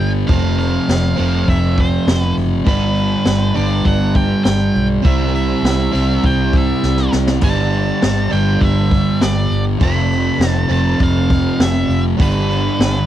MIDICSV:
0, 0, Header, 1, 5, 480
1, 0, Start_track
1, 0, Key_signature, 1, "major"
1, 0, Tempo, 595238
1, 238, Time_signature, 4, 2, 24, 8
1, 10532, End_track
2, 0, Start_track
2, 0, Title_t, "Lead electric guitar"
2, 0, Program_c, 0, 29
2, 0, Note_on_c, 0, 79, 97
2, 82, Note_off_c, 0, 79, 0
2, 223, Note_on_c, 0, 77, 100
2, 466, Note_off_c, 0, 77, 0
2, 476, Note_on_c, 0, 77, 89
2, 1199, Note_off_c, 0, 77, 0
2, 1202, Note_on_c, 0, 76, 90
2, 1445, Note_off_c, 0, 76, 0
2, 1451, Note_on_c, 0, 72, 75
2, 1765, Note_off_c, 0, 72, 0
2, 1765, Note_on_c, 0, 71, 75
2, 1890, Note_off_c, 0, 71, 0
2, 2158, Note_on_c, 0, 71, 88
2, 2871, Note_off_c, 0, 71, 0
2, 2874, Note_on_c, 0, 74, 90
2, 3105, Note_on_c, 0, 78, 106
2, 3120, Note_off_c, 0, 74, 0
2, 3351, Note_off_c, 0, 78, 0
2, 3354, Note_on_c, 0, 79, 99
2, 3573, Note_off_c, 0, 79, 0
2, 3582, Note_on_c, 0, 79, 98
2, 3921, Note_off_c, 0, 79, 0
2, 4074, Note_on_c, 0, 76, 101
2, 4304, Note_off_c, 0, 76, 0
2, 4313, Note_on_c, 0, 76, 93
2, 5048, Note_off_c, 0, 76, 0
2, 5051, Note_on_c, 0, 79, 98
2, 5288, Note_off_c, 0, 79, 0
2, 5301, Note_on_c, 0, 76, 81
2, 5734, Note_off_c, 0, 76, 0
2, 6000, Note_on_c, 0, 81, 93
2, 6710, Note_off_c, 0, 81, 0
2, 6713, Note_on_c, 0, 79, 92
2, 6940, Note_on_c, 0, 76, 96
2, 6960, Note_off_c, 0, 79, 0
2, 7434, Note_off_c, 0, 76, 0
2, 7437, Note_on_c, 0, 74, 93
2, 7770, Note_off_c, 0, 74, 0
2, 7926, Note_on_c, 0, 83, 102
2, 8450, Note_off_c, 0, 83, 0
2, 8450, Note_on_c, 0, 81, 102
2, 8644, Note_off_c, 0, 81, 0
2, 8647, Note_on_c, 0, 81, 100
2, 8887, Note_off_c, 0, 81, 0
2, 8894, Note_on_c, 0, 77, 102
2, 9372, Note_off_c, 0, 77, 0
2, 9375, Note_on_c, 0, 76, 91
2, 9700, Note_off_c, 0, 76, 0
2, 9849, Note_on_c, 0, 71, 90
2, 10532, Note_off_c, 0, 71, 0
2, 10532, End_track
3, 0, Start_track
3, 0, Title_t, "Overdriven electric guitar"
3, 0, Program_c, 1, 29
3, 0, Note_on_c, 1, 43, 66
3, 0, Note_on_c, 1, 50, 71
3, 0, Note_on_c, 1, 55, 78
3, 0, Note_on_c, 1, 59, 83
3, 0, Note_on_c, 1, 62, 82
3, 215, Note_off_c, 1, 62, 0
3, 219, Note_off_c, 1, 59, 0
3, 221, Note_off_c, 1, 43, 0
3, 221, Note_off_c, 1, 55, 0
3, 224, Note_on_c, 1, 41, 97
3, 226, Note_off_c, 1, 50, 0
3, 235, Note_on_c, 1, 48, 88
3, 239, Note_on_c, 1, 53, 93
3, 246, Note_on_c, 1, 57, 93
3, 254, Note_on_c, 1, 60, 96
3, 928, Note_off_c, 1, 60, 0
3, 935, Note_off_c, 1, 41, 0
3, 937, Note_on_c, 1, 60, 85
3, 940, Note_off_c, 1, 48, 0
3, 942, Note_off_c, 1, 53, 0
3, 945, Note_off_c, 1, 57, 0
3, 948, Note_on_c, 1, 57, 80
3, 954, Note_on_c, 1, 53, 81
3, 962, Note_on_c, 1, 48, 67
3, 964, Note_on_c, 1, 41, 73
3, 2130, Note_off_c, 1, 60, 0
3, 2133, Note_off_c, 1, 41, 0
3, 2136, Note_on_c, 1, 43, 92
3, 2138, Note_off_c, 1, 53, 0
3, 2141, Note_off_c, 1, 48, 0
3, 2144, Note_on_c, 1, 50, 97
3, 2152, Note_off_c, 1, 57, 0
3, 2153, Note_on_c, 1, 55, 96
3, 2155, Note_on_c, 1, 59, 98
3, 2165, Note_on_c, 1, 62, 103
3, 2847, Note_off_c, 1, 62, 0
3, 2850, Note_off_c, 1, 43, 0
3, 2854, Note_off_c, 1, 50, 0
3, 2856, Note_off_c, 1, 59, 0
3, 2857, Note_on_c, 1, 62, 90
3, 2866, Note_on_c, 1, 59, 73
3, 2869, Note_off_c, 1, 55, 0
3, 2872, Note_on_c, 1, 55, 74
3, 2876, Note_on_c, 1, 50, 72
3, 2886, Note_on_c, 1, 43, 64
3, 4047, Note_off_c, 1, 50, 0
3, 4049, Note_off_c, 1, 62, 0
3, 4050, Note_on_c, 1, 48, 93
3, 4054, Note_off_c, 1, 59, 0
3, 4062, Note_off_c, 1, 55, 0
3, 4064, Note_off_c, 1, 43, 0
3, 4065, Note_on_c, 1, 55, 96
3, 4073, Note_on_c, 1, 60, 98
3, 4080, Note_on_c, 1, 64, 96
3, 4766, Note_off_c, 1, 48, 0
3, 4766, Note_off_c, 1, 64, 0
3, 4776, Note_on_c, 1, 64, 85
3, 4778, Note_off_c, 1, 60, 0
3, 4790, Note_on_c, 1, 60, 81
3, 4792, Note_off_c, 1, 55, 0
3, 4796, Note_on_c, 1, 55, 76
3, 4805, Note_on_c, 1, 48, 71
3, 5970, Note_off_c, 1, 64, 0
3, 5977, Note_off_c, 1, 60, 0
3, 5978, Note_on_c, 1, 43, 85
3, 5979, Note_off_c, 1, 55, 0
3, 5982, Note_off_c, 1, 48, 0
3, 5985, Note_on_c, 1, 50, 91
3, 5988, Note_on_c, 1, 55, 88
3, 5994, Note_on_c, 1, 59, 89
3, 6006, Note_on_c, 1, 62, 90
3, 6682, Note_off_c, 1, 62, 0
3, 6687, Note_off_c, 1, 59, 0
3, 6691, Note_off_c, 1, 43, 0
3, 6691, Note_on_c, 1, 62, 80
3, 6695, Note_off_c, 1, 50, 0
3, 6696, Note_off_c, 1, 55, 0
3, 6697, Note_on_c, 1, 59, 79
3, 6705, Note_on_c, 1, 55, 76
3, 6710, Note_on_c, 1, 50, 70
3, 6714, Note_on_c, 1, 43, 68
3, 7888, Note_off_c, 1, 62, 0
3, 7891, Note_off_c, 1, 59, 0
3, 7895, Note_off_c, 1, 55, 0
3, 7898, Note_off_c, 1, 43, 0
3, 7898, Note_off_c, 1, 50, 0
3, 7901, Note_on_c, 1, 41, 91
3, 7909, Note_on_c, 1, 48, 99
3, 7921, Note_on_c, 1, 53, 94
3, 7924, Note_on_c, 1, 57, 94
3, 7932, Note_on_c, 1, 60, 101
3, 8609, Note_off_c, 1, 60, 0
3, 8613, Note_off_c, 1, 41, 0
3, 8617, Note_off_c, 1, 48, 0
3, 8619, Note_on_c, 1, 60, 84
3, 8623, Note_off_c, 1, 53, 0
3, 8629, Note_off_c, 1, 57, 0
3, 8633, Note_on_c, 1, 57, 82
3, 8635, Note_on_c, 1, 53, 80
3, 8640, Note_on_c, 1, 48, 74
3, 8650, Note_on_c, 1, 41, 68
3, 9812, Note_off_c, 1, 60, 0
3, 9815, Note_off_c, 1, 41, 0
3, 9818, Note_on_c, 1, 43, 90
3, 9820, Note_off_c, 1, 53, 0
3, 9823, Note_off_c, 1, 48, 0
3, 9828, Note_on_c, 1, 50, 92
3, 9837, Note_on_c, 1, 55, 94
3, 9838, Note_off_c, 1, 57, 0
3, 9841, Note_on_c, 1, 59, 99
3, 9846, Note_on_c, 1, 62, 106
3, 10532, Note_off_c, 1, 43, 0
3, 10532, Note_off_c, 1, 50, 0
3, 10532, Note_off_c, 1, 55, 0
3, 10532, Note_off_c, 1, 59, 0
3, 10532, Note_off_c, 1, 62, 0
3, 10532, End_track
4, 0, Start_track
4, 0, Title_t, "Fingered electric bass"
4, 0, Program_c, 2, 33
4, 0, Note_on_c, 2, 31, 85
4, 188, Note_off_c, 2, 31, 0
4, 237, Note_on_c, 2, 29, 97
4, 623, Note_off_c, 2, 29, 0
4, 712, Note_on_c, 2, 29, 83
4, 906, Note_off_c, 2, 29, 0
4, 959, Note_on_c, 2, 29, 85
4, 1150, Note_off_c, 2, 29, 0
4, 1194, Note_on_c, 2, 29, 88
4, 1580, Note_off_c, 2, 29, 0
4, 1668, Note_on_c, 2, 29, 90
4, 1863, Note_off_c, 2, 29, 0
4, 1914, Note_on_c, 2, 30, 85
4, 2106, Note_off_c, 2, 30, 0
4, 2150, Note_on_c, 2, 31, 92
4, 2537, Note_off_c, 2, 31, 0
4, 2629, Note_on_c, 2, 31, 85
4, 2823, Note_off_c, 2, 31, 0
4, 2875, Note_on_c, 2, 31, 83
4, 3067, Note_off_c, 2, 31, 0
4, 3102, Note_on_c, 2, 31, 88
4, 3492, Note_off_c, 2, 31, 0
4, 3588, Note_on_c, 2, 31, 89
4, 3782, Note_off_c, 2, 31, 0
4, 3833, Note_on_c, 2, 35, 89
4, 4025, Note_off_c, 2, 35, 0
4, 4070, Note_on_c, 2, 36, 90
4, 4456, Note_off_c, 2, 36, 0
4, 4534, Note_on_c, 2, 36, 87
4, 4734, Note_off_c, 2, 36, 0
4, 4788, Note_on_c, 2, 36, 81
4, 4983, Note_off_c, 2, 36, 0
4, 5026, Note_on_c, 2, 36, 88
4, 5414, Note_off_c, 2, 36, 0
4, 5509, Note_on_c, 2, 36, 95
4, 5703, Note_off_c, 2, 36, 0
4, 5748, Note_on_c, 2, 36, 88
4, 5943, Note_off_c, 2, 36, 0
4, 5979, Note_on_c, 2, 31, 94
4, 6370, Note_off_c, 2, 31, 0
4, 6474, Note_on_c, 2, 31, 87
4, 6666, Note_off_c, 2, 31, 0
4, 6713, Note_on_c, 2, 31, 79
4, 6906, Note_off_c, 2, 31, 0
4, 6947, Note_on_c, 2, 31, 87
4, 7335, Note_off_c, 2, 31, 0
4, 7433, Note_on_c, 2, 31, 92
4, 7626, Note_off_c, 2, 31, 0
4, 7670, Note_on_c, 2, 31, 85
4, 7864, Note_off_c, 2, 31, 0
4, 7908, Note_on_c, 2, 29, 93
4, 8297, Note_off_c, 2, 29, 0
4, 8378, Note_on_c, 2, 29, 90
4, 8577, Note_off_c, 2, 29, 0
4, 8624, Note_on_c, 2, 29, 86
4, 8821, Note_off_c, 2, 29, 0
4, 8871, Note_on_c, 2, 29, 93
4, 9258, Note_off_c, 2, 29, 0
4, 9348, Note_on_c, 2, 29, 92
4, 9544, Note_off_c, 2, 29, 0
4, 9585, Note_on_c, 2, 29, 89
4, 9782, Note_off_c, 2, 29, 0
4, 9837, Note_on_c, 2, 31, 92
4, 10222, Note_off_c, 2, 31, 0
4, 10315, Note_on_c, 2, 31, 89
4, 10507, Note_off_c, 2, 31, 0
4, 10532, End_track
5, 0, Start_track
5, 0, Title_t, "Drums"
5, 1, Note_on_c, 9, 46, 57
5, 82, Note_off_c, 9, 46, 0
5, 236, Note_on_c, 9, 36, 103
5, 238, Note_on_c, 9, 46, 73
5, 317, Note_off_c, 9, 36, 0
5, 318, Note_off_c, 9, 46, 0
5, 475, Note_on_c, 9, 46, 58
5, 555, Note_off_c, 9, 46, 0
5, 718, Note_on_c, 9, 46, 78
5, 720, Note_on_c, 9, 38, 104
5, 798, Note_off_c, 9, 46, 0
5, 801, Note_off_c, 9, 38, 0
5, 961, Note_on_c, 9, 46, 56
5, 1041, Note_off_c, 9, 46, 0
5, 1195, Note_on_c, 9, 36, 79
5, 1197, Note_on_c, 9, 46, 76
5, 1275, Note_off_c, 9, 36, 0
5, 1277, Note_off_c, 9, 46, 0
5, 1434, Note_on_c, 9, 36, 88
5, 1436, Note_on_c, 9, 46, 55
5, 1515, Note_off_c, 9, 36, 0
5, 1517, Note_off_c, 9, 46, 0
5, 1673, Note_on_c, 9, 46, 71
5, 1676, Note_on_c, 9, 38, 112
5, 1754, Note_off_c, 9, 46, 0
5, 1756, Note_off_c, 9, 38, 0
5, 1910, Note_on_c, 9, 46, 57
5, 1990, Note_off_c, 9, 46, 0
5, 2144, Note_on_c, 9, 46, 72
5, 2151, Note_on_c, 9, 36, 113
5, 2225, Note_off_c, 9, 46, 0
5, 2231, Note_off_c, 9, 36, 0
5, 2388, Note_on_c, 9, 46, 53
5, 2468, Note_off_c, 9, 46, 0
5, 2622, Note_on_c, 9, 46, 68
5, 2625, Note_on_c, 9, 38, 107
5, 2703, Note_off_c, 9, 46, 0
5, 2705, Note_off_c, 9, 38, 0
5, 2868, Note_on_c, 9, 46, 55
5, 2948, Note_off_c, 9, 46, 0
5, 3102, Note_on_c, 9, 46, 70
5, 3108, Note_on_c, 9, 36, 78
5, 3182, Note_off_c, 9, 46, 0
5, 3188, Note_off_c, 9, 36, 0
5, 3341, Note_on_c, 9, 46, 52
5, 3347, Note_on_c, 9, 36, 83
5, 3422, Note_off_c, 9, 46, 0
5, 3428, Note_off_c, 9, 36, 0
5, 3587, Note_on_c, 9, 46, 75
5, 3589, Note_on_c, 9, 38, 108
5, 3667, Note_off_c, 9, 46, 0
5, 3670, Note_off_c, 9, 38, 0
5, 3834, Note_on_c, 9, 46, 57
5, 3915, Note_off_c, 9, 46, 0
5, 4070, Note_on_c, 9, 46, 78
5, 4071, Note_on_c, 9, 36, 115
5, 4151, Note_off_c, 9, 46, 0
5, 4152, Note_off_c, 9, 36, 0
5, 4313, Note_on_c, 9, 46, 56
5, 4394, Note_off_c, 9, 46, 0
5, 4553, Note_on_c, 9, 46, 72
5, 4555, Note_on_c, 9, 38, 100
5, 4633, Note_off_c, 9, 46, 0
5, 4636, Note_off_c, 9, 38, 0
5, 4791, Note_on_c, 9, 46, 56
5, 4871, Note_off_c, 9, 46, 0
5, 5029, Note_on_c, 9, 36, 84
5, 5030, Note_on_c, 9, 46, 75
5, 5110, Note_off_c, 9, 36, 0
5, 5111, Note_off_c, 9, 46, 0
5, 5268, Note_on_c, 9, 36, 85
5, 5270, Note_on_c, 9, 46, 58
5, 5349, Note_off_c, 9, 36, 0
5, 5350, Note_off_c, 9, 46, 0
5, 5511, Note_on_c, 9, 38, 60
5, 5592, Note_off_c, 9, 38, 0
5, 5625, Note_on_c, 9, 38, 61
5, 5705, Note_off_c, 9, 38, 0
5, 5746, Note_on_c, 9, 38, 81
5, 5826, Note_off_c, 9, 38, 0
5, 5865, Note_on_c, 9, 38, 84
5, 5946, Note_off_c, 9, 38, 0
5, 5976, Note_on_c, 9, 46, 73
5, 5976, Note_on_c, 9, 55, 83
5, 5984, Note_on_c, 9, 36, 107
5, 6056, Note_off_c, 9, 46, 0
5, 6056, Note_off_c, 9, 55, 0
5, 6065, Note_off_c, 9, 36, 0
5, 6225, Note_on_c, 9, 46, 56
5, 6306, Note_off_c, 9, 46, 0
5, 6467, Note_on_c, 9, 46, 68
5, 6470, Note_on_c, 9, 38, 110
5, 6548, Note_off_c, 9, 46, 0
5, 6551, Note_off_c, 9, 38, 0
5, 6705, Note_on_c, 9, 46, 50
5, 6786, Note_off_c, 9, 46, 0
5, 6944, Note_on_c, 9, 46, 69
5, 6947, Note_on_c, 9, 36, 84
5, 7025, Note_off_c, 9, 46, 0
5, 7027, Note_off_c, 9, 36, 0
5, 7188, Note_on_c, 9, 36, 85
5, 7190, Note_on_c, 9, 46, 53
5, 7269, Note_off_c, 9, 36, 0
5, 7270, Note_off_c, 9, 46, 0
5, 7428, Note_on_c, 9, 46, 74
5, 7430, Note_on_c, 9, 38, 111
5, 7509, Note_off_c, 9, 46, 0
5, 7511, Note_off_c, 9, 38, 0
5, 7672, Note_on_c, 9, 46, 56
5, 7753, Note_off_c, 9, 46, 0
5, 7910, Note_on_c, 9, 46, 70
5, 7911, Note_on_c, 9, 36, 109
5, 7990, Note_off_c, 9, 46, 0
5, 7991, Note_off_c, 9, 36, 0
5, 8154, Note_on_c, 9, 46, 56
5, 8234, Note_off_c, 9, 46, 0
5, 8392, Note_on_c, 9, 46, 75
5, 8394, Note_on_c, 9, 38, 106
5, 8472, Note_off_c, 9, 46, 0
5, 8475, Note_off_c, 9, 38, 0
5, 8632, Note_on_c, 9, 46, 58
5, 8713, Note_off_c, 9, 46, 0
5, 8869, Note_on_c, 9, 46, 77
5, 8872, Note_on_c, 9, 36, 85
5, 8950, Note_off_c, 9, 46, 0
5, 8952, Note_off_c, 9, 36, 0
5, 9111, Note_on_c, 9, 46, 62
5, 9113, Note_on_c, 9, 36, 89
5, 9192, Note_off_c, 9, 46, 0
5, 9194, Note_off_c, 9, 36, 0
5, 9352, Note_on_c, 9, 46, 80
5, 9354, Note_on_c, 9, 38, 112
5, 9432, Note_off_c, 9, 46, 0
5, 9435, Note_off_c, 9, 38, 0
5, 9596, Note_on_c, 9, 46, 60
5, 9677, Note_off_c, 9, 46, 0
5, 9836, Note_on_c, 9, 36, 110
5, 9836, Note_on_c, 9, 46, 80
5, 9916, Note_off_c, 9, 46, 0
5, 9917, Note_off_c, 9, 36, 0
5, 10082, Note_on_c, 9, 46, 58
5, 10163, Note_off_c, 9, 46, 0
5, 10323, Note_on_c, 9, 46, 72
5, 10326, Note_on_c, 9, 38, 107
5, 10404, Note_off_c, 9, 46, 0
5, 10406, Note_off_c, 9, 38, 0
5, 10532, End_track
0, 0, End_of_file